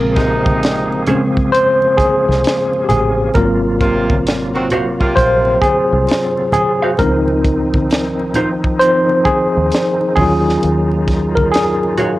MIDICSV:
0, 0, Header, 1, 8, 480
1, 0, Start_track
1, 0, Key_signature, -5, "minor"
1, 0, Tempo, 909091
1, 1769, Time_signature, 4, 2, 24, 8
1, 6438, End_track
2, 0, Start_track
2, 0, Title_t, "Hollow-body jazz guitar"
2, 0, Program_c, 0, 26
2, 568, Note_on_c, 0, 61, 64
2, 572, Note_on_c, 0, 68, 60
2, 577, Note_on_c, 0, 72, 65
2, 636, Note_off_c, 0, 61, 0
2, 639, Note_off_c, 0, 68, 0
2, 641, Note_off_c, 0, 72, 0
2, 2491, Note_on_c, 0, 66, 59
2, 2496, Note_on_c, 0, 72, 71
2, 2501, Note_on_c, 0, 77, 69
2, 2558, Note_off_c, 0, 66, 0
2, 2561, Note_off_c, 0, 72, 0
2, 2563, Note_off_c, 0, 77, 0
2, 3603, Note_on_c, 0, 77, 60
2, 3609, Note_on_c, 0, 72, 55
2, 3611, Note_on_c, 0, 66, 50
2, 3641, Note_off_c, 0, 77, 0
2, 3644, Note_off_c, 0, 72, 0
2, 3645, Note_off_c, 0, 66, 0
2, 4411, Note_on_c, 0, 63, 63
2, 4415, Note_on_c, 0, 65, 68
2, 4421, Note_on_c, 0, 72, 77
2, 4478, Note_off_c, 0, 63, 0
2, 4480, Note_off_c, 0, 65, 0
2, 4483, Note_off_c, 0, 72, 0
2, 6323, Note_on_c, 0, 66, 56
2, 6331, Note_on_c, 0, 73, 58
2, 6334, Note_on_c, 0, 77, 59
2, 6394, Note_off_c, 0, 66, 0
2, 6398, Note_off_c, 0, 73, 0
2, 6400, Note_off_c, 0, 77, 0
2, 6438, End_track
3, 0, Start_track
3, 0, Title_t, "Tine electric piano"
3, 0, Program_c, 1, 4
3, 0, Control_c, 1, 64, 127
3, 0, Note_on_c, 1, 49, 51
3, 0, Note_on_c, 1, 56, 50
3, 0, Note_on_c, 1, 60, 59
3, 0, Note_on_c, 1, 70, 97
3, 550, Note_off_c, 1, 49, 0
3, 552, Note_off_c, 1, 56, 0
3, 553, Note_off_c, 1, 60, 0
3, 572, Note_on_c, 1, 49, 49
3, 573, Note_on_c, 1, 56, 43
3, 576, Note_on_c, 1, 60, 50
3, 787, Note_off_c, 1, 70, 0
3, 789, Note_off_c, 1, 49, 0
3, 790, Note_off_c, 1, 56, 0
3, 791, Note_off_c, 1, 60, 0
3, 804, Note_on_c, 1, 72, 116
3, 1042, Note_on_c, 1, 68, 93
3, 1054, Note_off_c, 1, 72, 0
3, 1501, Note_on_c, 1, 67, 66
3, 1512, Note_off_c, 1, 68, 0
3, 1525, Note_on_c, 1, 68, 85
3, 1528, Note_off_c, 1, 67, 0
3, 1766, Note_on_c, 1, 70, 98
3, 1774, Note_off_c, 1, 68, 0
3, 1774, Note_on_c, 1, 54, 54
3, 1775, Control_c, 1, 64, 0
3, 1776, Note_on_c, 1, 58, 53
3, 1777, Note_on_c, 1, 60, 50
3, 1782, Note_on_c, 1, 65, 60
3, 1873, Control_c, 1, 64, 127
3, 2723, Note_on_c, 1, 72, 105
3, 2756, Note_off_c, 1, 70, 0
3, 2965, Note_on_c, 1, 68, 101
3, 2973, Note_off_c, 1, 72, 0
3, 3441, Note_off_c, 1, 68, 0
3, 3447, Note_on_c, 1, 68, 88
3, 3670, Note_off_c, 1, 54, 0
3, 3671, Note_off_c, 1, 58, 0
3, 3672, Note_off_c, 1, 60, 0
3, 3674, Note_off_c, 1, 65, 0
3, 3689, Note_on_c, 1, 70, 94
3, 3695, Note_off_c, 1, 68, 0
3, 3696, Control_c, 1, 64, 0
3, 3697, Note_on_c, 1, 53, 53
3, 3701, Note_on_c, 1, 60, 54
3, 3704, Note_on_c, 1, 63, 62
3, 3799, Control_c, 1, 64, 127
3, 4037, Note_off_c, 1, 53, 0
3, 4039, Note_off_c, 1, 60, 0
3, 4041, Note_off_c, 1, 63, 0
3, 4628, Note_off_c, 1, 70, 0
3, 4644, Note_on_c, 1, 72, 110
3, 4659, Note_on_c, 1, 53, 52
3, 4659, Note_on_c, 1, 60, 48
3, 4661, Note_on_c, 1, 63, 57
3, 4873, Note_off_c, 1, 53, 0
3, 4873, Note_off_c, 1, 60, 0
3, 4874, Note_off_c, 1, 63, 0
3, 4883, Note_on_c, 1, 68, 96
3, 4894, Note_off_c, 1, 72, 0
3, 5345, Note_off_c, 1, 68, 0
3, 5363, Note_on_c, 1, 68, 92
3, 5375, Control_c, 1, 64, 0
3, 5376, Note_on_c, 1, 54, 54
3, 5379, Note_on_c, 1, 61, 49
3, 5381, Note_on_c, 1, 65, 61
3, 5462, Control_c, 1, 64, 127
3, 5716, Note_off_c, 1, 54, 0
3, 5718, Note_off_c, 1, 61, 0
3, 5719, Note_off_c, 1, 65, 0
3, 5994, Note_on_c, 1, 70, 84
3, 6017, Note_off_c, 1, 68, 0
3, 6079, Note_off_c, 1, 70, 0
3, 6081, Note_on_c, 1, 68, 88
3, 6438, Note_off_c, 1, 68, 0
3, 6438, End_track
4, 0, Start_track
4, 0, Title_t, "Tonewheel organ"
4, 0, Program_c, 2, 16
4, 0, Note_on_c, 2, 53, 63
4, 0, Note_on_c, 2, 58, 58
4, 0, Note_on_c, 2, 60, 59
4, 0, Note_on_c, 2, 68, 74
4, 801, Note_off_c, 2, 60, 0
4, 812, Note_on_c, 2, 61, 60
4, 1752, Note_off_c, 2, 53, 0
4, 1752, Note_off_c, 2, 58, 0
4, 1752, Note_off_c, 2, 68, 0
4, 1761, Note_off_c, 2, 61, 0
4, 1771, Note_on_c, 2, 54, 58
4, 1772, Note_on_c, 2, 48, 67
4, 1772, Note_on_c, 2, 58, 58
4, 1773, Note_on_c, 2, 65, 74
4, 2721, Note_off_c, 2, 58, 0
4, 2730, Note_on_c, 2, 60, 62
4, 3671, Note_off_c, 2, 48, 0
4, 3671, Note_off_c, 2, 54, 0
4, 3672, Note_off_c, 2, 65, 0
4, 3687, Note_on_c, 2, 51, 69
4, 3690, Note_on_c, 2, 63, 75
4, 3691, Note_on_c, 2, 53, 61
4, 5348, Note_off_c, 2, 60, 0
4, 5353, Note_off_c, 2, 53, 0
4, 5373, Note_on_c, 2, 65, 70
4, 5374, Note_on_c, 2, 54, 62
4, 6322, Note_off_c, 2, 65, 0
4, 6330, Note_on_c, 2, 65, 75
4, 6438, Note_off_c, 2, 51, 0
4, 6438, Note_off_c, 2, 54, 0
4, 6438, Note_off_c, 2, 63, 0
4, 6438, Note_off_c, 2, 65, 0
4, 6438, End_track
5, 0, Start_track
5, 0, Title_t, "Horn section"
5, 0, Program_c, 3, 61
5, 86, Note_on_c, 3, 63, 78
5, 87, Note_on_c, 3, 48, 72
5, 87, Note_on_c, 3, 56, 67
5, 546, Note_off_c, 3, 63, 0
5, 547, Note_off_c, 3, 48, 0
5, 547, Note_off_c, 3, 56, 0
5, 2008, Note_on_c, 3, 65, 82
5, 2009, Note_on_c, 3, 48, 72
5, 2009, Note_on_c, 3, 58, 71
5, 2200, Note_off_c, 3, 65, 0
5, 2201, Note_off_c, 3, 48, 0
5, 2201, Note_off_c, 3, 58, 0
5, 2401, Note_on_c, 3, 66, 71
5, 2402, Note_on_c, 3, 51, 66
5, 2403, Note_on_c, 3, 60, 64
5, 2471, Note_off_c, 3, 66, 0
5, 2472, Note_off_c, 3, 51, 0
5, 2472, Note_off_c, 3, 60, 0
5, 2644, Note_on_c, 3, 48, 70
5, 2644, Note_on_c, 3, 58, 67
5, 2645, Note_on_c, 3, 65, 77
5, 2951, Note_off_c, 3, 48, 0
5, 2951, Note_off_c, 3, 58, 0
5, 2951, Note_off_c, 3, 65, 0
5, 6438, End_track
6, 0, Start_track
6, 0, Title_t, "Fingered electric bass"
6, 0, Program_c, 4, 33
6, 0, Note_on_c, 4, 34, 99
6, 1029, Note_off_c, 4, 34, 0
6, 1207, Note_on_c, 4, 36, 92
6, 1281, Note_off_c, 4, 36, 0
6, 1534, Note_on_c, 4, 33, 90
6, 1740, Note_off_c, 4, 33, 0
6, 1773, Note_on_c, 4, 32, 101
6, 2710, Note_off_c, 4, 32, 0
6, 2734, Note_on_c, 4, 34, 88
6, 2940, Note_off_c, 4, 34, 0
6, 3128, Note_on_c, 4, 36, 92
6, 3201, Note_off_c, 4, 36, 0
6, 3692, Note_on_c, 4, 37, 107
6, 4870, Note_off_c, 4, 37, 0
6, 5053, Note_on_c, 4, 39, 88
6, 5124, Note_off_c, 4, 39, 0
6, 5373, Note_on_c, 4, 39, 99
6, 5580, Note_off_c, 4, 39, 0
6, 5619, Note_on_c, 4, 39, 101
6, 6438, Note_off_c, 4, 39, 0
6, 6438, End_track
7, 0, Start_track
7, 0, Title_t, "Muted fingered electric bass strokes"
7, 1050, Note_on_c, 9, 29, 47
7, 1102, Note_off_c, 9, 29, 0
7, 4887, Note_on_c, 9, 29, 46
7, 4940, Note_off_c, 9, 29, 0
7, 6438, End_track
8, 0, Start_track
8, 0, Title_t, "Drums"
8, 5, Note_on_c, 9, 62, 29
8, 58, Note_off_c, 9, 62, 0
8, 86, Note_on_c, 9, 42, 74
8, 88, Note_on_c, 9, 36, 93
8, 97, Note_on_c, 9, 38, 34
8, 139, Note_off_c, 9, 42, 0
8, 141, Note_off_c, 9, 36, 0
8, 150, Note_off_c, 9, 38, 0
8, 243, Note_on_c, 9, 36, 92
8, 248, Note_on_c, 9, 63, 65
8, 296, Note_off_c, 9, 36, 0
8, 301, Note_off_c, 9, 63, 0
8, 333, Note_on_c, 9, 42, 90
8, 334, Note_on_c, 9, 62, 29
8, 342, Note_on_c, 9, 38, 118
8, 386, Note_off_c, 9, 42, 0
8, 387, Note_off_c, 9, 62, 0
8, 395, Note_off_c, 9, 38, 0
8, 487, Note_on_c, 9, 62, 32
8, 540, Note_off_c, 9, 62, 0
8, 563, Note_on_c, 9, 42, 63
8, 565, Note_on_c, 9, 64, 57
8, 616, Note_off_c, 9, 42, 0
8, 618, Note_off_c, 9, 64, 0
8, 723, Note_on_c, 9, 36, 77
8, 776, Note_off_c, 9, 36, 0
8, 816, Note_on_c, 9, 42, 89
8, 869, Note_off_c, 9, 42, 0
8, 960, Note_on_c, 9, 62, 29
8, 1013, Note_off_c, 9, 62, 0
8, 1045, Note_on_c, 9, 36, 88
8, 1052, Note_on_c, 9, 63, 58
8, 1053, Note_on_c, 9, 42, 64
8, 1098, Note_off_c, 9, 36, 0
8, 1105, Note_off_c, 9, 63, 0
8, 1106, Note_off_c, 9, 42, 0
8, 1220, Note_on_c, 9, 38, 35
8, 1273, Note_off_c, 9, 38, 0
8, 1290, Note_on_c, 9, 42, 79
8, 1305, Note_on_c, 9, 38, 104
8, 1343, Note_off_c, 9, 42, 0
8, 1358, Note_off_c, 9, 38, 0
8, 1443, Note_on_c, 9, 62, 29
8, 1496, Note_off_c, 9, 62, 0
8, 1526, Note_on_c, 9, 63, 69
8, 1526, Note_on_c, 9, 64, 69
8, 1530, Note_on_c, 9, 42, 66
8, 1579, Note_off_c, 9, 63, 0
8, 1579, Note_off_c, 9, 64, 0
8, 1583, Note_off_c, 9, 42, 0
8, 1762, Note_on_c, 9, 62, 37
8, 1769, Note_on_c, 9, 36, 114
8, 1772, Note_on_c, 9, 42, 74
8, 1815, Note_off_c, 9, 62, 0
8, 1822, Note_off_c, 9, 36, 0
8, 1825, Note_off_c, 9, 42, 0
8, 2010, Note_on_c, 9, 36, 95
8, 2010, Note_on_c, 9, 42, 78
8, 2063, Note_off_c, 9, 36, 0
8, 2063, Note_off_c, 9, 42, 0
8, 2164, Note_on_c, 9, 36, 95
8, 2169, Note_on_c, 9, 63, 63
8, 2217, Note_off_c, 9, 36, 0
8, 2222, Note_off_c, 9, 63, 0
8, 2254, Note_on_c, 9, 42, 99
8, 2263, Note_on_c, 9, 38, 120
8, 2307, Note_off_c, 9, 42, 0
8, 2316, Note_off_c, 9, 38, 0
8, 2406, Note_on_c, 9, 62, 31
8, 2459, Note_off_c, 9, 62, 0
8, 2484, Note_on_c, 9, 42, 61
8, 2485, Note_on_c, 9, 64, 57
8, 2537, Note_off_c, 9, 42, 0
8, 2538, Note_off_c, 9, 64, 0
8, 2644, Note_on_c, 9, 36, 82
8, 2697, Note_off_c, 9, 36, 0
8, 2729, Note_on_c, 9, 36, 97
8, 2729, Note_on_c, 9, 62, 26
8, 2736, Note_on_c, 9, 42, 94
8, 2782, Note_off_c, 9, 36, 0
8, 2782, Note_off_c, 9, 62, 0
8, 2789, Note_off_c, 9, 42, 0
8, 2878, Note_on_c, 9, 62, 32
8, 2931, Note_off_c, 9, 62, 0
8, 2966, Note_on_c, 9, 36, 88
8, 2971, Note_on_c, 9, 63, 59
8, 2975, Note_on_c, 9, 42, 66
8, 3019, Note_off_c, 9, 36, 0
8, 3024, Note_off_c, 9, 63, 0
8, 3028, Note_off_c, 9, 42, 0
8, 3205, Note_on_c, 9, 62, 34
8, 3213, Note_on_c, 9, 42, 79
8, 3228, Note_on_c, 9, 38, 108
8, 3258, Note_off_c, 9, 62, 0
8, 3266, Note_off_c, 9, 42, 0
8, 3281, Note_off_c, 9, 38, 0
8, 3365, Note_on_c, 9, 62, 31
8, 3418, Note_off_c, 9, 62, 0
8, 3444, Note_on_c, 9, 63, 69
8, 3444, Note_on_c, 9, 64, 71
8, 3451, Note_on_c, 9, 42, 66
8, 3497, Note_off_c, 9, 63, 0
8, 3497, Note_off_c, 9, 64, 0
8, 3504, Note_off_c, 9, 42, 0
8, 3681, Note_on_c, 9, 62, 37
8, 3690, Note_on_c, 9, 36, 108
8, 3692, Note_on_c, 9, 42, 81
8, 3734, Note_off_c, 9, 62, 0
8, 3742, Note_off_c, 9, 36, 0
8, 3745, Note_off_c, 9, 42, 0
8, 3843, Note_on_c, 9, 62, 30
8, 3895, Note_off_c, 9, 62, 0
8, 3931, Note_on_c, 9, 36, 91
8, 3932, Note_on_c, 9, 42, 79
8, 3984, Note_off_c, 9, 36, 0
8, 3985, Note_off_c, 9, 42, 0
8, 4085, Note_on_c, 9, 36, 92
8, 4087, Note_on_c, 9, 63, 66
8, 4138, Note_off_c, 9, 36, 0
8, 4140, Note_off_c, 9, 63, 0
8, 4170, Note_on_c, 9, 62, 29
8, 4175, Note_on_c, 9, 42, 93
8, 4184, Note_on_c, 9, 38, 120
8, 4223, Note_off_c, 9, 62, 0
8, 4228, Note_off_c, 9, 42, 0
8, 4237, Note_off_c, 9, 38, 0
8, 4326, Note_on_c, 9, 62, 33
8, 4379, Note_off_c, 9, 62, 0
8, 4403, Note_on_c, 9, 64, 59
8, 4405, Note_on_c, 9, 42, 62
8, 4456, Note_off_c, 9, 64, 0
8, 4458, Note_off_c, 9, 42, 0
8, 4563, Note_on_c, 9, 36, 84
8, 4616, Note_off_c, 9, 36, 0
8, 4649, Note_on_c, 9, 62, 26
8, 4653, Note_on_c, 9, 42, 92
8, 4701, Note_off_c, 9, 62, 0
8, 4706, Note_off_c, 9, 42, 0
8, 4801, Note_on_c, 9, 62, 31
8, 4853, Note_off_c, 9, 62, 0
8, 4885, Note_on_c, 9, 36, 90
8, 4894, Note_on_c, 9, 42, 66
8, 4896, Note_on_c, 9, 63, 62
8, 4938, Note_off_c, 9, 36, 0
8, 4947, Note_off_c, 9, 42, 0
8, 4949, Note_off_c, 9, 63, 0
8, 5123, Note_on_c, 9, 62, 33
8, 5130, Note_on_c, 9, 42, 81
8, 5146, Note_on_c, 9, 38, 108
8, 5176, Note_off_c, 9, 62, 0
8, 5183, Note_off_c, 9, 42, 0
8, 5198, Note_off_c, 9, 38, 0
8, 5284, Note_on_c, 9, 62, 30
8, 5337, Note_off_c, 9, 62, 0
8, 5366, Note_on_c, 9, 63, 74
8, 5366, Note_on_c, 9, 64, 75
8, 5369, Note_on_c, 9, 36, 99
8, 5370, Note_on_c, 9, 46, 50
8, 5419, Note_off_c, 9, 63, 0
8, 5419, Note_off_c, 9, 64, 0
8, 5422, Note_off_c, 9, 36, 0
8, 5423, Note_off_c, 9, 46, 0
8, 5539, Note_on_c, 9, 38, 33
8, 5592, Note_off_c, 9, 38, 0
8, 5603, Note_on_c, 9, 62, 37
8, 5613, Note_on_c, 9, 42, 77
8, 5656, Note_off_c, 9, 62, 0
8, 5666, Note_off_c, 9, 42, 0
8, 5764, Note_on_c, 9, 62, 28
8, 5816, Note_off_c, 9, 62, 0
8, 5849, Note_on_c, 9, 36, 92
8, 5850, Note_on_c, 9, 42, 76
8, 5861, Note_on_c, 9, 38, 32
8, 5902, Note_off_c, 9, 36, 0
8, 5903, Note_off_c, 9, 42, 0
8, 5914, Note_off_c, 9, 38, 0
8, 6004, Note_on_c, 9, 36, 97
8, 6007, Note_on_c, 9, 63, 64
8, 6056, Note_off_c, 9, 36, 0
8, 6059, Note_off_c, 9, 63, 0
8, 6093, Note_on_c, 9, 42, 96
8, 6102, Note_on_c, 9, 38, 115
8, 6146, Note_off_c, 9, 42, 0
8, 6155, Note_off_c, 9, 38, 0
8, 6248, Note_on_c, 9, 62, 31
8, 6300, Note_off_c, 9, 62, 0
8, 6323, Note_on_c, 9, 42, 60
8, 6324, Note_on_c, 9, 64, 55
8, 6376, Note_off_c, 9, 42, 0
8, 6377, Note_off_c, 9, 64, 0
8, 6438, End_track
0, 0, End_of_file